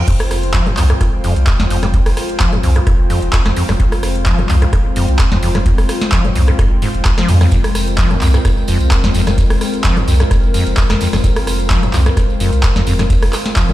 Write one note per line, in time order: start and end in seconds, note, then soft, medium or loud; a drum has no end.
0.00 13.73 F4 medium
0.00 13.73 C5 medium
0.00 13.73 G5 medium
0.08 0.59 F1 loud
0.08 0.12 F2 medium
0.08 13.73 G#3 medium
0.08 13.73 C4 medium
0.08 7.50 F4 loud
0.08 kick loud
0.08 closed hi-hat medium
0.08 crash loud
0.20 cross-stick medium
0.20 open hi-hat medium
0.31 cross-stick medium
0.31 open hi-hat loud
0.43 closed hi-hat medium
0.54 0.68 F3 loud
0.54 kick loud
0.54 clap loud
0.54 closed hi-hat medium
0.67 0.73 F2 medium
0.67 cross-stick soft
0.67 closed hi-hat soft
0.67 low conga medium
0.77 0.92 C2 loud
0.77 0.84 F2 medium
0.77 clap medium
0.77 open hi-hat loud
0.90 0.93 G2 medium
0.90 cross-stick medium
0.90 closed hi-hat medium
1.01 1.16 F1 medium
1.01 1.05 G#2 medium
1.01 kick loud
1.01 cross-stick medium
1.01 closed hi-hat medium
1.24 1.32 D#1 loud
1.24 1.34 F2 medium
1.24 open hi-hat loud
1.36 1.43 C2 medium
1.36 closed hi-hat medium
1.47 kick loud
1.47 cross-stick soft
1.47 clap loud
1.47 closed hi-hat medium
1.60 1.66 F2 medium
1.60 snare medium
1.60 low conga medium
1.70 1.98 F1 medium
1.70 1.77 F2 medium
1.70 open hi-hat loud
1.83 1.86 G2 medium
1.83 cross-stick medium
1.83 snare soft
1.83 closed hi-hat medium
1.83 low conga medium
1.94 1.98 F2 medium
1.94 kick loud
1.94 closed hi-hat medium
2.06 2.13 F1 medium
2.06 cross-stick medium
2.06 open hi-hat medium
2.17 cross-stick medium
2.17 open hi-hat loud
2.29 closed hi-hat medium
2.40 2.54 F3 loud
2.40 kick loud
2.40 clap loud
2.40 closed hi-hat medium
2.53 2.59 F2 medium
2.53 cross-stick soft
2.53 closed hi-hat soft
2.53 low conga loud
2.63 2.78 C2 loud
2.63 2.70 F2 medium
2.63 open hi-hat loud
2.76 2.79 G2 medium
2.76 cross-stick medium
2.76 closed hi-hat medium
2.87 2.91 G#2 medium
2.87 kick loud
2.87 cross-stick medium
2.87 closed hi-hat medium
2.99 3.13 F1 medium
3.10 3.20 F2 medium
3.10 open hi-hat loud
3.22 3.29 F1 loud
3.22 closed hi-hat medium
3.33 kick loud
3.33 cross-stick soft
3.33 clap loud
3.33 closed hi-hat medium
3.46 3.52 D#1 medium
3.46 3.52 F2 medium
3.46 cross-stick medium
3.46 snare medium
3.56 3.63 F2 medium
3.56 open hi-hat loud
3.69 3.76 F1 medium
3.69 3.72 G2 medium
3.69 cross-stick medium
3.69 snare soft
3.69 open hi-hat medium
3.69 low conga medium
3.80 4.31 F1 loud
3.80 3.84 F2 medium
3.80 kick loud
3.80 closed hi-hat medium
3.92 cross-stick medium
3.92 open hi-hat medium
4.03 cross-stick medium
4.03 open hi-hat loud
4.15 closed hi-hat medium
4.26 4.40 F3 loud
4.26 kick loud
4.26 clap loud
4.26 closed hi-hat medium
4.39 4.45 F2 medium
4.39 cross-stick soft
4.39 closed hi-hat soft
4.39 low conga medium
4.49 4.64 C2 loud
4.49 4.56 F2 medium
4.49 clap medium
4.49 open hi-hat loud
4.62 4.65 G2 medium
4.62 cross-stick medium
4.62 closed hi-hat soft
4.73 4.88 F1 medium
4.73 4.77 G#2 medium
4.73 kick loud
4.73 cross-stick medium
4.73 closed hi-hat medium
4.96 5.04 D#1 loud
4.96 5.06 F2 medium
4.96 open hi-hat loud
5.08 5.15 C2 medium
5.08 closed hi-hat medium
5.19 kick loud
5.19 cross-stick soft
5.19 clap loud
5.19 closed hi-hat medium
5.32 5.38 F2 medium
5.32 snare medium
5.32 low conga loud
5.43 5.71 F1 medium
5.43 5.49 F2 medium
5.43 open hi-hat loud
5.55 5.59 G2 medium
5.55 cross-stick medium
5.55 snare soft
5.55 closed hi-hat soft
5.55 low conga medium
5.66 5.70 F2 medium
5.66 kick loud
5.66 closed hi-hat medium
5.78 5.85 F1 medium
5.78 cross-stick medium
5.78 open hi-hat medium
5.89 cross-stick medium
5.89 open hi-hat loud
6.01 snare medium
6.01 closed hi-hat soft
6.12 6.26 F3 loud
6.12 kick loud
6.12 clap loud
6.12 closed hi-hat medium
6.25 6.31 F2 medium
6.25 cross-stick soft
6.25 closed hi-hat soft
6.25 low conga medium
6.36 6.50 C2 loud
6.36 6.42 F2 medium
6.36 open hi-hat loud
6.48 6.52 G2 medium
6.48 cross-stick medium
6.48 closed hi-hat soft
6.59 6.63 G#2 medium
6.59 kick loud
6.59 cross-stick medium
6.59 closed hi-hat medium
6.71 6.85 F1 medium
6.82 6.89 G#2 medium
6.82 open hi-hat loud
6.95 7.01 F1 loud
6.95 closed hi-hat medium
7.05 kick loud
7.05 cross-stick soft
7.05 clap loud
7.05 closed hi-hat medium
7.18 7.30 F3 loud
7.18 cross-stick medium
7.18 snare medium
7.29 7.43 F2 medium
7.29 7.39 G2 medium
7.29 open hi-hat loud
7.41 7.47 F2 medium
7.41 cross-stick medium
7.41 snare soft
7.41 open hi-hat medium
7.41 low conga medium
7.51 8.03 F1 loud
7.51 7.56 F2 medium
7.51 13.73 A#4 loud
7.51 kick loud
7.51 closed hi-hat medium
7.51 tambourine medium
7.64 cross-stick medium
7.64 open hi-hat medium
7.64 tambourine soft
7.75 cross-stick medium
7.75 open hi-hat loud
7.75 tambourine medium
7.87 closed hi-hat medium
7.87 tambourine soft
7.98 8.12 F3 loud
7.98 kick loud
7.98 clap loud
7.98 closed hi-hat medium
7.98 tambourine medium
8.11 8.17 F2 medium
8.11 cross-stick soft
8.11 closed hi-hat soft
8.11 tambourine soft
8.11 low conga medium
8.21 8.36 C2 loud
8.21 8.28 F2 medium
8.21 clap medium
8.21 open hi-hat loud
8.21 tambourine medium
8.34 8.38 G2 medium
8.34 cross-stick medium
8.34 closed hi-hat medium
8.34 tambourine soft
8.45 8.60 F1 medium
8.45 8.49 G#2 medium
8.45 kick loud
8.45 cross-stick medium
8.45 closed hi-hat medium
8.45 tambourine medium
8.57 tambourine soft
8.68 8.76 D#1 loud
8.68 8.78 F2 medium
8.68 open hi-hat loud
8.68 tambourine medium
8.80 8.87 C2 medium
8.80 closed hi-hat medium
8.80 tambourine soft
8.91 kick loud
8.91 cross-stick soft
8.91 clap loud
8.91 closed hi-hat medium
8.91 tambourine medium
9.04 9.10 F2 medium
9.04 snare medium
9.04 tambourine soft
9.04 low conga medium
9.14 9.43 F1 medium
9.14 9.21 F2 medium
9.14 open hi-hat loud
9.14 tambourine medium
9.27 9.31 G2 medium
9.27 cross-stick medium
9.27 snare soft
9.27 closed hi-hat soft
9.27 tambourine soft
9.27 low conga medium
9.38 9.42 F2 medium
9.38 kick loud
9.38 closed hi-hat medium
9.38 tambourine medium
9.50 9.57 F1 medium
9.50 cross-stick medium
9.50 open hi-hat medium
9.50 tambourine soft
9.61 cross-stick medium
9.61 open hi-hat loud
9.61 tambourine medium
9.74 closed hi-hat medium
9.74 tambourine soft
9.84 9.98 F3 loud
9.84 kick loud
9.84 clap loud
9.84 closed hi-hat medium
9.84 tambourine soft
9.97 10.03 F2 medium
9.97 cross-stick soft
9.97 closed hi-hat soft
9.97 tambourine soft
9.97 low conga medium
10.08 10.22 C2 loud
10.08 10.15 F2 medium
10.08 open hi-hat loud
10.08 tambourine medium
10.20 10.24 G2 medium
10.20 cross-stick medium
10.20 closed hi-hat medium
10.20 tambourine soft
10.31 10.35 G#2 medium
10.31 kick loud
10.31 cross-stick medium
10.31 closed hi-hat medium
10.31 tambourine soft
10.43 10.57 F1 medium
10.43 tambourine soft
10.54 10.64 F2 medium
10.54 open hi-hat loud
10.54 tambourine medium
10.66 10.73 F1 loud
10.66 closed hi-hat medium
10.66 tambourine soft
10.77 kick loud
10.77 cross-stick soft
10.77 clap loud
10.77 closed hi-hat medium
10.77 tambourine medium
10.90 10.97 D#1 medium
10.90 10.96 F2 medium
10.90 cross-stick medium
10.90 snare medium
11.01 11.08 F2 medium
11.01 open hi-hat loud
11.01 tambourine medium
11.13 11.20 F1 medium
11.13 11.17 G2 medium
11.13 cross-stick medium
11.13 snare soft
11.13 open hi-hat medium
11.13 tambourine soft
11.13 low conga medium
11.24 11.75 F1 loud
11.24 11.28 F2 medium
11.24 kick loud
11.24 closed hi-hat medium
11.24 tambourine medium
11.36 cross-stick medium
11.36 open hi-hat medium
11.47 cross-stick medium
11.47 open hi-hat loud
11.47 tambourine loud
11.60 closed hi-hat medium
11.60 tambourine soft
11.70 11.84 F3 loud
11.70 kick loud
11.70 clap loud
11.70 closed hi-hat medium
11.70 tambourine medium
11.83 11.89 F2 medium
11.83 cross-stick soft
11.83 closed hi-hat soft
11.83 tambourine soft
11.83 low conga medium
11.93 12.09 C2 loud
11.93 12.01 F2 medium
11.93 clap medium
11.93 open hi-hat loud
11.93 tambourine medium
12.06 12.10 G2 medium
12.06 cross-stick medium
12.06 closed hi-hat medium
12.06 tambourine soft
12.17 12.32 F1 medium
12.17 12.21 G#2 medium
12.17 kick loud
12.17 cross-stick medium
12.17 closed hi-hat medium
12.17 tambourine soft
12.30 tambourine soft
12.40 12.48 D#1 loud
12.40 12.50 F2 medium
12.40 open hi-hat loud
12.40 tambourine medium
12.53 12.59 C2 medium
12.53 closed hi-hat medium
12.53 tambourine soft
12.63 kick loud
12.63 cross-stick soft
12.63 clap loud
12.63 closed hi-hat medium
12.63 tambourine soft
12.76 12.82 F2 medium
12.76 snare medium
12.76 low conga medium
12.87 13.15 F1 medium
12.87 12.94 F2 medium
12.87 open hi-hat loud
12.87 tambourine medium
12.99 13.03 G2 medium
12.99 cross-stick medium
12.99 snare soft
12.99 closed hi-hat medium
12.99 tambourine soft
12.99 low conga medium
13.10 13.14 F2 medium
13.10 kick loud
13.10 closed hi-hat medium
13.10 tambourine soft
13.22 13.29 F1 medium
13.22 cross-stick medium
13.22 open hi-hat medium
13.33 cross-stick medium
13.33 clap medium
13.33 open hi-hat loud
13.33 tambourine loud
13.46 snare medium
13.46 closed hi-hat medium
13.46 tambourine soft
13.56 13.70 F3 loud
13.56 kick loud
13.56 clap loud
13.56 closed hi-hat medium
13.56 tambourine medium
13.69 13.73 F2 medium
13.69 cross-stick soft
13.69 closed hi-hat soft
13.69 tambourine soft
13.69 low conga medium